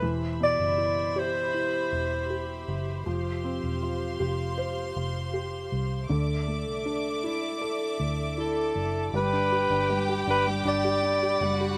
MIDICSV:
0, 0, Header, 1, 6, 480
1, 0, Start_track
1, 0, Key_signature, 1, "major"
1, 0, Tempo, 759494
1, 15, Time_signature, 4, 2, 24, 8
1, 7443, End_track
2, 0, Start_track
2, 0, Title_t, "String section"
2, 0, Program_c, 0, 48
2, 15, Note_on_c, 0, 83, 68
2, 17, Note_on_c, 0, 67, 66
2, 17, Note_on_c, 0, 72, 59
2, 17, Note_on_c, 0, 76, 58
2, 1916, Note_off_c, 0, 83, 0
2, 1917, Note_off_c, 0, 76, 0
2, 1934, Note_on_c, 0, 84, 76
2, 1935, Note_on_c, 0, 77, 59
2, 3831, Note_off_c, 0, 67, 0
2, 3831, Note_off_c, 0, 72, 0
2, 3836, Note_off_c, 0, 77, 0
2, 3836, Note_off_c, 0, 84, 0
2, 3857, Note_on_c, 0, 69, 70
2, 3857, Note_on_c, 0, 74, 65
2, 3859, Note_on_c, 0, 86, 80
2, 3860, Note_on_c, 0, 76, 62
2, 5757, Note_off_c, 0, 69, 0
2, 5757, Note_off_c, 0, 74, 0
2, 5758, Note_off_c, 0, 86, 0
2, 5759, Note_off_c, 0, 76, 0
2, 5775, Note_on_c, 0, 86, 75
2, 5777, Note_on_c, 0, 83, 66
2, 5778, Note_on_c, 0, 55, 71
2, 5778, Note_on_c, 0, 74, 64
2, 7443, Note_off_c, 0, 55, 0
2, 7443, Note_off_c, 0, 74, 0
2, 7443, Note_off_c, 0, 83, 0
2, 7443, Note_off_c, 0, 86, 0
2, 7443, End_track
3, 0, Start_track
3, 0, Title_t, "Violin section"
3, 0, Program_c, 1, 48
3, 5773, Note_on_c, 1, 67, 69
3, 5774, Note_on_c, 1, 79, 75
3, 7189, Note_off_c, 1, 67, 0
3, 7190, Note_off_c, 1, 79, 0
3, 7210, Note_on_c, 1, 66, 69
3, 7211, Note_on_c, 1, 78, 85
3, 7443, Note_off_c, 1, 66, 0
3, 7443, Note_off_c, 1, 78, 0
3, 7443, End_track
4, 0, Start_track
4, 0, Title_t, "Alto saxophone"
4, 0, Program_c, 2, 65
4, 0, Note_on_c, 2, 71, 72
4, 93, Note_off_c, 2, 71, 0
4, 273, Note_on_c, 2, 74, 92
4, 753, Note_on_c, 2, 72, 84
4, 762, Note_off_c, 2, 74, 0
4, 1704, Note_off_c, 2, 72, 0
4, 5303, Note_on_c, 2, 69, 81
4, 5754, Note_off_c, 2, 69, 0
4, 5790, Note_on_c, 2, 71, 94
4, 6478, Note_off_c, 2, 71, 0
4, 6511, Note_on_c, 2, 71, 97
4, 6612, Note_off_c, 2, 71, 0
4, 6751, Note_on_c, 2, 74, 103
4, 7443, Note_off_c, 2, 74, 0
4, 7443, End_track
5, 0, Start_track
5, 0, Title_t, "Felt piano"
5, 0, Program_c, 3, 0
5, 0, Control_c, 3, 64, 127
5, 14, Note_on_c, 3, 52, 62
5, 23, Control_c, 3, 64, 0
5, 126, Control_c, 3, 64, 127
5, 253, Note_on_c, 3, 47, 46
5, 491, Note_on_c, 3, 64, 50
5, 732, Note_on_c, 3, 67, 54
5, 966, Note_off_c, 3, 64, 0
5, 975, Note_on_c, 3, 64, 55
5, 1189, Note_off_c, 3, 47, 0
5, 1444, Note_off_c, 3, 67, 0
5, 1453, Note_on_c, 3, 67, 53
5, 1910, Note_off_c, 3, 52, 0
5, 1910, Note_off_c, 3, 64, 0
5, 1920, Note_off_c, 3, 67, 0
5, 1933, Note_on_c, 3, 53, 66
5, 1943, Control_c, 3, 64, 0
5, 2066, Control_c, 3, 64, 127
5, 2175, Note_on_c, 3, 60, 49
5, 2416, Note_on_c, 3, 65, 50
5, 2653, Note_on_c, 3, 67, 54
5, 2892, Note_on_c, 3, 72, 62
5, 3110, Note_off_c, 3, 60, 0
5, 3350, Note_off_c, 3, 65, 0
5, 3361, Note_off_c, 3, 67, 0
5, 3371, Note_on_c, 3, 67, 53
5, 3828, Note_off_c, 3, 72, 0
5, 3829, Note_off_c, 3, 53, 0
5, 3839, Note_off_c, 3, 67, 0
5, 3851, Note_on_c, 3, 50, 62
5, 3863, Control_c, 3, 64, 0
5, 3991, Control_c, 3, 64, 127
5, 4092, Note_on_c, 3, 57, 48
5, 4332, Note_on_c, 3, 62, 55
5, 4573, Note_on_c, 3, 64, 56
5, 4812, Note_on_c, 3, 69, 62
5, 5028, Note_off_c, 3, 57, 0
5, 5269, Note_off_c, 3, 62, 0
5, 5283, Note_off_c, 3, 64, 0
5, 5293, Note_on_c, 3, 64, 54
5, 5748, Note_off_c, 3, 50, 0
5, 5748, Note_off_c, 3, 69, 0
5, 5760, Note_off_c, 3, 64, 0
5, 5777, Note_on_c, 3, 55, 61
5, 5782, Control_c, 3, 64, 0
5, 5886, Control_c, 3, 64, 127
5, 5896, Note_on_c, 3, 62, 47
5, 6016, Note_on_c, 3, 67, 52
5, 6126, Note_off_c, 3, 62, 0
5, 6136, Note_on_c, 3, 62, 49
5, 6243, Note_off_c, 3, 55, 0
5, 6252, Note_on_c, 3, 55, 55
5, 6366, Note_off_c, 3, 67, 0
5, 6375, Note_on_c, 3, 67, 48
5, 6484, Note_off_c, 3, 62, 0
5, 6494, Note_on_c, 3, 62, 55
5, 6605, Note_off_c, 3, 55, 0
5, 6614, Note_on_c, 3, 55, 51
5, 6722, Note_off_c, 3, 62, 0
5, 6731, Note_on_c, 3, 62, 72
5, 6844, Note_off_c, 3, 67, 0
5, 6853, Note_on_c, 3, 67, 48
5, 6961, Note_off_c, 3, 62, 0
5, 6971, Note_on_c, 3, 62, 54
5, 7086, Note_off_c, 3, 67, 0
5, 7096, Note_on_c, 3, 67, 53
5, 7206, Note_off_c, 3, 55, 0
5, 7216, Note_on_c, 3, 55, 55
5, 7325, Note_off_c, 3, 67, 0
5, 7334, Note_on_c, 3, 67, 53
5, 7443, Note_off_c, 3, 55, 0
5, 7443, Note_off_c, 3, 62, 0
5, 7443, Note_off_c, 3, 67, 0
5, 7443, End_track
6, 0, Start_track
6, 0, Title_t, "Fingered electric bass"
6, 0, Program_c, 4, 33
6, 14, Note_on_c, 4, 28, 95
6, 349, Note_off_c, 4, 28, 0
6, 374, Note_on_c, 4, 30, 72
6, 1190, Note_off_c, 4, 30, 0
6, 1216, Note_on_c, 4, 28, 83
6, 1670, Note_off_c, 4, 28, 0
6, 1695, Note_on_c, 4, 30, 80
6, 1919, Note_off_c, 4, 30, 0
6, 1937, Note_on_c, 4, 29, 92
6, 2271, Note_off_c, 4, 29, 0
6, 2297, Note_on_c, 4, 28, 76
6, 2631, Note_off_c, 4, 28, 0
6, 2657, Note_on_c, 4, 29, 87
6, 3111, Note_off_c, 4, 29, 0
6, 3137, Note_on_c, 4, 29, 86
6, 3591, Note_off_c, 4, 29, 0
6, 3616, Note_on_c, 4, 36, 75
6, 3839, Note_off_c, 4, 36, 0
6, 3856, Note_on_c, 4, 38, 104
6, 4215, Note_off_c, 4, 38, 0
6, 4215, Note_on_c, 4, 36, 77
6, 5030, Note_off_c, 4, 36, 0
6, 5054, Note_on_c, 4, 38, 87
6, 5509, Note_off_c, 4, 38, 0
6, 5533, Note_on_c, 4, 30, 83
6, 5757, Note_off_c, 4, 30, 0
6, 5772, Note_on_c, 4, 31, 96
6, 6108, Note_off_c, 4, 31, 0
6, 6131, Note_on_c, 4, 31, 90
6, 6468, Note_off_c, 4, 31, 0
6, 6492, Note_on_c, 4, 31, 81
6, 6717, Note_off_c, 4, 31, 0
6, 6730, Note_on_c, 4, 31, 95
6, 7187, Note_off_c, 4, 31, 0
6, 7209, Note_on_c, 4, 30, 83
6, 7435, Note_off_c, 4, 30, 0
6, 7443, End_track
0, 0, End_of_file